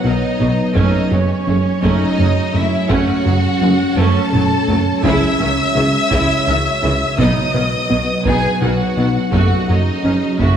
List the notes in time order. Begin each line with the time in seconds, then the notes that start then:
Already playing: F#3 B3 B4 C#5
0.04 B1 B2 D#3 F#3 D#4 D#5
0.40 B1 B2 F#3 B3 D#4
0.75 F#1 F#2 F#3 A3 C#4 D#4 F#4 C#5 D#5, taiko
1.11 F#1 F#2 F#3 G#3 C#4 F#4 C#5
1.47 F#1 F#2 F#3 G#3 A3 C#4
1.82 F#1 F#2 F#3 A3 C#4 D#4 D#5, taiko
2.18 F#1 F#2 F#3 G#3 A3
2.54 F#1 F#2 G#3 A3 E4 E5
2.89 F#1 F#2 F#3 A3 C#4 F#4 F#5, taiko
3.25 F#1 F#2 F#3 G#3 F#4
3.61 F#1 F#2 F#3 G#3 A3 C#4
3.96 F#1 F#2 F#3 A3 C#4 A4 A5, taiko high
4.32 F#1 F#2 F#3 A3, taiko mid
4.68 F#1 F#2 F#3 A3, taiko low
5.04 C#2 C#3 G#3 E4 E5 E6, taiko
5.39 C#2 C#3 D#3 C#4
5.75 C#2 C#3 D#3 E3 G#3
6.11 C#2 C#3 G#3 E4, taiko
6.46 C#2 C#3 D#3 E3 C#4
6.83 C#2 C#3 D#3 E3
7.18 B1 B2 F#3 B3 D#4 F#4 B4 D#5 D#6, taiko
7.54 B1 B2 D#3 F#3 B4
7.90 B1 B2 F#3 B3 F#4
8.25 B1 B2 B3 D#4 G#4 G#5, taiko
8.61 B1 B2 D#3 F#3 D#4 F#4 F#5
8.97 B1 B2 F#3 B3 D#4
9.32 F#1 F#2 F#3 A3 C#4 F#4 G#4 F#5, taiko
9.68 F#1 F#2 F#3 A3 D#4 F#4 D#5
10.04 F#1 F#2 F#3 G#3 C#4
10.39 F#1 F#2 F#3 A3 E4 F#4 E5, taiko